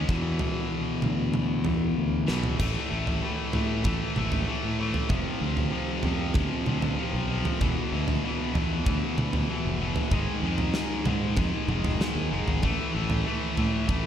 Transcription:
0.08 2.26 E2 medium
0.08 0.38 E2 medium
0.08 2.27 B2 medium
0.08 2.26 E3 loud
0.08 kick medium
0.39 floor tom medium
1.02 1.62 D2 medium
1.02 mid tom medium
1.34 mid tom medium
1.65 1.94 E2 loud
1.65 floor tom medium
1.98 2.26 D2 medium
2.27 2.57 B1 medium
2.27 2.59 E2 medium
2.27 2.58 B2 medium
2.27 2.57 E3 medium
2.27 snare medium
2.44 floor tom medium
2.58 2.74 A1 medium
2.58 2.88 A2 medium
2.58 2.89 E3 medium
2.58 2.90 A3 loud
2.58 kick loud
2.58 floor tom medium
2.58 crash loud
2.90 3.20 A1 medium
2.90 3.21 A2 medium
2.90 3.21 E3 medium
2.90 3.22 A3 loud
3.07 floor tom medium
3.22 3.51 A2 medium
3.22 3.52 E3 loud
3.22 3.53 A3 loud
3.53 3.82 A2 medium
3.53 3.83 E3 medium
3.53 3.84 A3 medium
3.53 floor tom medium
3.83 3.99 A1 medium
3.83 4.15 A2 medium
3.83 4.15 E3 medium
3.83 4.16 A3 medium
3.83 kick loud
3.83 floor tom medium
4.16 4.45 G#1 medium
4.16 4.46 A2 medium
4.16 4.46 E3 medium
4.16 4.47 A3 medium
4.16 mid tom medium
4.32 floor tom medium
4.47 4.78 A2 medium
4.47 4.78 E3 medium
4.47 4.79 A3 medium
4.64 4.92 A2 medium
4.79 5.09 A2 medium
4.79 5.09 E3 medium
4.79 5.09 A3 loud
4.94 floor tom medium
5.09 5.24 F1 medium
5.09 5.40 F2 medium
5.09 5.40 C3 medium
5.09 5.41 F3 loud
5.09 kick loud
5.09 floor tom medium
5.41 5.70 D2 medium
5.41 5.70 F2 medium
5.41 5.71 C3 medium
5.41 5.72 F3 loud
5.57 floor tom medium
5.71 6.03 F2 medium
5.71 6.04 C3 medium
5.71 6.04 F3 loud
6.03 6.34 F2 medium
6.03 6.33 F2 medium
6.03 6.35 C3 medium
6.03 6.36 F3 loud
6.03 floor tom medium
6.34 6.50 D2 loud
6.34 6.66 F2 medium
6.34 6.67 C3 medium
6.34 6.67 F3 loud
6.34 kick loud
6.34 floor tom medium
6.66 6.95 D2 medium
6.66 6.96 F2 medium
6.66 6.97 C3 medium
6.66 6.98 F3 medium
6.66 mid tom medium
6.82 floor tom medium
6.98 7.27 F2 medium
6.98 7.28 C3 medium
6.98 7.29 F3 medium
7.13 7.42 B1 medium
7.29 7.59 F2 medium
7.29 7.59 C3 medium
7.29 7.59 F3 loud
7.45 floor tom medium
7.60 7.76 E1 medium
7.60 7.91 E2 medium
7.60 7.92 B2 loud
7.60 7.92 E3 loud
7.60 kick loud
7.60 floor tom medium
7.92 8.21 D2 medium
7.92 8.23 E2 medium
7.92 8.24 B2 medium
7.92 8.24 E3 loud
8.08 floor tom medium
8.24 8.53 E2 loud
8.24 8.53 B2 medium
8.24 8.55 E3 loud
8.54 8.83 E2 medium
8.54 8.84 E2 medium
8.54 8.85 B2 medium
8.54 8.85 E3 medium
8.54 floor tom medium
8.85 9.01 D2 medium
8.85 9.16 E2 medium
8.85 9.16 B2 loud
8.85 9.17 E3 loud
8.85 kick loud
8.85 floor tom medium
9.17 9.46 D2 medium
9.17 9.47 E2 medium
9.17 9.49 B2 medium
9.17 9.49 E3 medium
9.17 mid tom medium
9.33 floor tom medium
9.49 9.78 E2 medium
9.49 9.79 B2 medium
9.49 9.80 E3 medium
9.65 9.94 F1 medium
9.80 10.10 E2 medium
9.80 10.10 B2 medium
9.80 10.10 E3 loud
9.96 floor tom medium
10.11 10.26 G#1 medium
10.11 10.42 G#2 loud
10.11 10.43 D#3 medium
10.11 10.44 G#3 loud
10.11 kick loud
10.11 floor tom medium
10.43 10.72 F2 medium
10.43 10.74 G#2 medium
10.43 10.75 D#3 medium
10.43 10.75 G#3 medium
10.58 floor tom medium
10.74 11.05 G#2 medium
10.74 11.06 D#3 loud
10.74 11.07 G#3 medium
10.74 snare medium
11.06 11.35 G#2 medium
11.06 11.36 G#2 medium
11.06 11.37 D#3 medium
11.06 11.38 G#3 medium
11.06 floor tom medium
11.06 mid tom medium
11.37 11.52 F2 medium
11.37 11.68 G#2 medium
11.37 11.69 D#3 medium
11.37 11.70 G#3 medium
11.37 kick loud
11.37 floor tom medium
11.68 11.97 F1 loud
11.68 11.98 G#2 medium
11.68 11.99 D#3 medium
11.68 11.99 G#3 medium
11.68 mid tom medium
11.85 floor tom medium
11.99 12.30 G#2 medium
11.99 12.31 D#3 medium
11.99 12.31 G#3 medium
11.99 snare medium
12.15 12.30 D#2 medium
12.31 12.46 F1 medium
12.31 12.61 G#2 medium
12.31 12.61 D#3 medium
12.31 12.62 G#3 medium
12.46 12.61 G#1 medium
12.46 floor tom medium
12.63 12.77 A1 medium
12.63 12.93 A2 medium
12.63 12.93 E3 loud
12.63 12.93 A3 loud
12.63 kick medium
12.63 floor tom medium
12.94 13.23 A1 medium
12.94 13.24 A2 medium
12.94 13.25 E3 medium
12.94 13.25 A3 medium
13.10 floor tom medium
13.25 13.55 A2 medium
13.25 13.56 E3 loud
13.25 13.57 A3 medium
13.56 13.86 A2 medium
13.56 13.87 E3 medium
13.56 13.88 A3 medium
13.56 floor tom medium
13.88 14.03 A1 loud
13.88 14.06 A2 medium
13.88 14.06 E3 medium
13.88 14.06 A3 medium
13.88 kick loud
13.88 floor tom medium

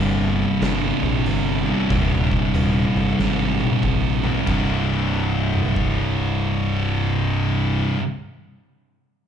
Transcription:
0.00 0.44 G1 loud
0.00 1.69 C2 medium
0.00 1.65 G2 loud
0.00 1.66 C3 loud
0.61 0.91 G1 medium
0.61 1.89 C2 medium
0.61 1.89 G2 medium
0.61 1.91 C3 medium
0.61 snare loud
0.61 open hi-hat medium
1.03 1.19 A#1 medium
1.25 1.72 G1 medium
1.25 open hi-hat medium
1.66 1.90 C2 medium
1.66 1.90 G2 medium
1.66 1.93 C3 medium
1.90 2.37 D#1 medium
1.90 4.22 C2 medium
1.90 4.23 G2 medium
1.90 4.22 C3 loud
1.90 kick loud
1.90 open hi-hat soft
2.31 kick medium
2.54 2.84 D#1 medium
2.54 open hi-hat medium
2.95 3.12 G1 medium
3.19 3.65 G#1 medium
3.19 4.46 C2 medium
3.19 4.47 G2 medium
3.19 4.48 C3 medium
3.19 snare medium
3.60 high tom medium
3.72 high tom medium
3.83 4.29 A#1 medium
3.83 kick medium
3.83 mid tom medium
4.24 4.45 C2 medium
4.24 4.47 G2 medium
4.24 4.46 C3 medium
4.24 floor tom loud
4.36 floor tom medium
4.46 7.80 C1 medium
4.46 7.96 C2 medium
4.46 7.99 G2 medium
4.46 kick loud
4.46 crash medium
4.50 8.00 C3 loud
5.54 mid tom medium
5.65 floor tom medium
5.76 kick medium

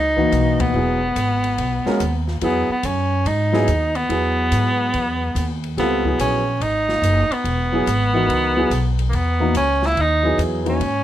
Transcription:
0.00 0.31 C#2 medium
0.00 0.62 D#4 loud
0.17 0.71 E3 medium
0.17 0.71 A#3 medium
0.17 0.72 D#4 medium
0.17 0.72 F#4 medium
0.17 kick soft
0.32 0.73 B1 medium
0.32 hi-hat pedal medium
0.32 ride medium
0.60 2.28 B3 medium
0.60 kick medium
0.60 ride medium
0.74 1.15 E1 medium
0.74 0.99 F#3 medium
0.74 0.99 B3 medium
0.74 0.99 E4 medium
0.74 1.00 G#4 medium
1.16 1.57 G#1 medium
1.16 hi-hat pedal medium
1.16 ride medium
1.44 ride soft
1.58 1.84 B1 medium
1.58 ride medium
1.85 1.99 G#3 medium
1.85 1.99 C#4 medium
1.85 2.00 F#4 medium
1.85 2.00 A#4 medium
1.85 muted upright bass stroke soft
1.85 snare soft
2.00 2.41 D#2 medium
2.00 hi-hat pedal medium
2.00 ride medium
2.28 snare soft
2.41 2.67 E2 medium
2.41 2.67 F#3 medium
2.41 2.67 B3 medium
2.41 2.68 B3 medium
2.41 2.67 E4 medium
2.41 2.68 G#4 medium
2.41 ride medium
2.69 2.87 B3 medium
2.69 muted upright bass stroke soft
2.83 3.24 F#2 medium
2.83 3.29 C#4 medium
2.83 hi-hat pedal medium
2.83 ride medium
3.25 3.66 G#2 medium
3.25 3.98 D#4 medium
3.25 ride medium
3.52 3.66 F#3 medium
3.52 3.66 B3 medium
3.52 3.67 E4 medium
3.52 3.67 G#4 medium
3.52 snare medium
3.68 4.08 D#2 medium
3.68 hi-hat pedal soft
3.68 ride medium
3.95 5.63 B3 medium
3.95 ride soft
4.09 4.50 E2 medium
4.09 5.27 F#3 medium
4.09 5.27 B3 medium
4.09 5.27 E4 medium
4.09 5.27 G#4 medium
4.09 ride medium
4.51 4.92 G#2 medium
4.51 hi-hat pedal medium
4.51 ride medium
4.94 5.35 E2 medium
4.94 ride medium
5.35 5.76 D#2 medium
5.35 hi-hat pedal medium
5.35 ride medium
5.64 ride soft
5.77 6.18 C#2 medium
5.77 6.02 G3 medium
5.77 6.18 B3 medium
5.77 6.03 C4 medium
5.77 6.03 F4 medium
5.77 6.03 A4 medium
5.77 snare soft
5.77 ride soft
6.05 6.42 F#3 medium
6.05 6.42 B3 medium
6.05 6.42 E4 medium
6.05 6.42 G#4 medium
6.05 kick medium
6.19 6.60 A#1 medium
6.19 6.64 C#4 medium
6.19 hi-hat pedal medium
6.19 ride medium
6.60 7.01 G#1 medium
6.60 7.34 D#4 medium
6.60 ride medium
6.89 snare soft
7.02 7.28 F#1 medium
7.02 hi-hat pedal medium
7.02 ride medium
7.30 8.99 B3 medium
7.30 muted upright bass stroke soft
7.30 ride soft
7.44 7.85 E1 medium
7.44 ride medium
7.72 7.86 F#3 medium
7.72 7.86 B3 medium
7.72 7.86 E4 medium
7.72 7.87 G#4 medium
7.86 8.27 G#1 medium
7.86 hi-hat pedal medium
7.86 ride medium
8.13 8.53 E3 medium
8.13 8.54 D#4 medium
8.13 8.54 F#4 medium
8.13 8.54 A#4 medium
8.28 8.69 C#2 medium
8.28 ride medium
8.56 8.69 F#3 medium
8.56 8.70 B3 medium
8.56 8.70 E4 medium
8.56 8.70 G#4 medium
8.70 9.11 B1 medium
8.70 hi-hat pedal soft
8.70 ride medium
8.99 ride soft
9.09 9.53 E2 medium
9.09 9.17 A#3 medium
9.13 9.56 B3 medium
9.13 ride medium
9.40 9.53 E3 medium
9.40 9.53 A#3 medium
9.40 9.54 D#4 medium
9.40 9.54 F#4 medium
9.54 9.95 C#2 medium
9.54 9.88 C#4 loud
9.54 hi-hat pedal medium
9.54 ride medium
9.82 10.02 E4 loud
9.82 snare soft
9.95 10.37 D#2 medium
9.95 ride medium
10.00 10.41 D#4 loud
10.23 10.63 F#3 medium
10.23 10.63 B3 medium
10.23 10.64 E4 medium
10.23 10.64 G#4 medium
10.38 10.79 E2 medium
10.38 hi-hat pedal medium
10.38 ride medium
10.65 10.79 E3 medium
10.65 10.79 A#3 medium
10.65 10.79 D#4 medium
10.65 10.79 F#4 medium
10.65 ride soft
10.69 11.04 C#4 medium
10.80 11.04 G#2 medium
10.80 ride medium

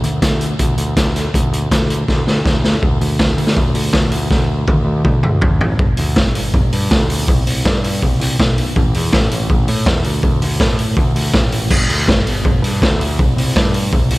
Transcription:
0.04 0.19 D2 medium
0.04 closed hi-hat medium
0.22 0.54 D2 medium
0.22 kick loud
0.22 snare loud
0.22 closed hi-hat medium
0.41 closed hi-hat medium
0.59 0.75 D2 medium
0.59 kick loud
0.59 closed hi-hat medium
0.77 0.94 D2 medium
0.77 closed hi-hat medium
0.96 1.28 D2 medium
0.96 kick loud
0.96 snare loud
0.96 closed hi-hat medium
1.16 snare soft
1.16 closed hi-hat medium
1.34 1.50 D2 medium
1.34 kick loud
1.34 closed hi-hat medium
1.52 1.68 D2 medium
1.52 closed hi-hat medium
1.71 2.03 D2 medium
1.71 kick loud
1.71 snare loud
1.71 closed hi-hat loud
1.90 closed hi-hat medium
2.08 2.24 D2 medium
2.08 kick loud
2.08 snare medium
2.27 2.43 D2 medium
2.27 snare medium
2.45 2.77 D2 loud
2.45 kick loud
2.45 snare medium
2.64 snare medium
2.82 2.99 D2 medium
2.82 kick loud
3.01 3.18 D2 medium
3.01 open hi-hat medium
3.19 3.36 D2 medium
3.19 kick loud
3.19 snare loud
3.37 3.55 D2 medium
3.37 open hi-hat medium
3.47 snare medium
3.57 3.74 D2 medium
3.57 kick loud
3.74 3.92 D2 medium
3.74 open hi-hat medium
3.93 4.11 D2 medium
3.93 kick loud
3.93 snare loud
4.11 4.29 D2 medium
4.11 open hi-hat medium
4.30 4.65 D2 loud
4.30 kick loud
4.30 snare medium
4.67 4.84 D2 medium
4.67 kick loud
4.67 high tom medium
4.85 5.03 D2 medium
5.05 5.22 D2 medium
5.05 kick loud
5.05 mid tom medium
5.23 5.40 D2 medium
5.23 mid tom medium
5.41 5.59 D2 medium
5.41 kick loud
5.41 floor tom loud
5.60 5.77 A1 medium
5.60 floor tom medium
5.79 5.97 G1 medium
5.79 kick loud
5.97 6.16 D2 medium
5.97 open hi-hat medium
6.16 6.34 G1 medium
6.16 kick loud
6.16 snare loud
6.35 6.53 G1 medium
6.35 open hi-hat medium
6.53 6.71 G1 loud
6.53 kick loud
6.72 6.90 G2 loud
6.72 open hi-hat medium
6.91 7.08 D2 loud
6.91 kick loud
6.91 snare loud
7.09 7.26 D2 loud
7.09 open hi-hat loud
7.28 7.45 C2 loud
7.28 kick loud
7.46 7.64 C2 medium
7.46 open hi-hat medium
7.65 8.00 G2 medium
7.65 kick loud
7.65 snare loud
7.84 open hi-hat loud
8.02 8.19 C2 medium
8.02 kick loud
8.20 8.37 C2 loud
8.20 open hi-hat medium
8.39 8.74 B1 loud
8.39 kick loud
8.39 snare loud
8.58 open hi-hat medium
8.76 8.93 A1 loud
8.76 kick loud
8.94 9.12 E2 loud
8.94 open hi-hat medium
9.13 9.30 A1 medium
9.13 kick loud
9.13 snare loud
9.31 9.49 A1 medium
9.31 open hi-hat medium
9.50 9.67 A1 loud
9.50 kick loud
9.68 9.86 A2 loud
9.68 open hi-hat medium
9.86 10.04 E2 loud
9.86 kick loud
9.86 snare loud
10.04 10.22 D2 loud
10.04 open hi-hat medium
10.23 10.40 D2 loud
10.23 kick loud
10.42 10.59 D2 medium
10.42 open hi-hat medium
10.60 10.95 A2 loud
10.60 kick loud
10.60 snare loud
10.79 open hi-hat medium
10.97 11.14 D2 loud
10.97 kick loud
11.15 11.32 D2 medium
11.15 open hi-hat medium
11.33 11.68 A1 loud
11.33 kick loud
11.33 snare loud
11.52 open hi-hat loud
11.70 11.88 G1 loud
11.70 kick loud
11.70 crash loud
11.89 12.06 D2 medium
11.89 open hi-hat medium
12.08 12.25 G1 loud
12.08 kick loud
12.08 snare loud
12.26 12.43 G1 medium
12.26 open hi-hat medium
12.45 12.62 G1 medium
12.45 kick loud
12.62 12.80 G2 medium
12.62 open hi-hat medium
12.82 12.99 D2 loud
12.82 kick loud
12.82 snare loud
12.99 13.17 D2 loud
12.99 open hi-hat medium
13.19 13.36 C2 loud
13.19 kick loud
13.36 13.54 C2 medium
13.36 open hi-hat medium
13.56 13.90 G2 medium
13.56 kick loud
13.56 snare loud
13.74 open hi-hat medium
13.92 14.10 C2 medium
13.92 kick loud
14.10 14.18 C2 loud
14.10 open hi-hat loud

